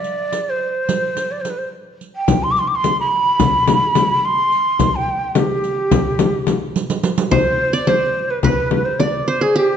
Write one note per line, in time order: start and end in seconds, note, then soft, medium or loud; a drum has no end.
0.00 0.50 D5 medium
0.04 riq soft
0.33 riq soft
0.49 1.32 C5 medium
0.89 riq medium
1.17 riq soft
1.31 1.42 D5 medium
1.40 1.51 C5 medium
1.45 riq soft
1.49 1.59 B4 medium
1.57 1.66 C5 medium
2.01 riq soft
2.15 2.44 G5 medium
2.28 riq medium
2.28 frame drum medium
2.43 2.52 C6 medium
2.51 2.60 D6 medium
2.56 2.68 C6 medium
2.56 riq soft
2.67 2.76 D6 medium
2.75 2.98 C6 loud
2.84 riq soft
2.84 frame drum medium
3.00 4.26 B5 medium
3.40 riq medium
3.40 frame drum medium
3.68 riq soft
3.68 frame drum medium
3.95 riq soft
3.95 frame drum medium
4.25 4.96 C6 loud
4.52 riq soft
4.79 riq medium
4.79 frame drum medium
4.95 5.38 G5 medium
5.35 6.58 G4 medium
5.35 riq soft
5.35 frame drum medium
5.64 riq soft
5.91 riq medium
5.91 frame drum loud
6.19 riq soft
6.19 frame drum medium
6.47 riq soft
6.47 frame drum medium
6.76 riq medium
6.90 riq medium
7.03 riq medium
7.18 riq medium
7.31 7.87 C5 medium
7.31 7.74 C5 medium
7.31 frame drum medium
7.73 7.90 D5 medium
7.73 8.72 D5 medium
7.87 8.50 C5 medium
7.87 8.31 C5 medium
7.87 frame drum medium
8.30 8.43 B4 medium
8.43 8.86 B4 medium
8.43 9.34 B4 medium
8.43 frame drum medium
8.71 frame drum medium
8.85 9.01 C5 medium
8.99 9.29 D5 medium
8.99 9.77 D5 medium
8.99 frame drum medium
9.27 9.43 C5 medium
9.27 9.77 C5 medium
9.41 9.56 G#4 medium
9.41 9.62 G#4 medium
9.55 9.77 G4 medium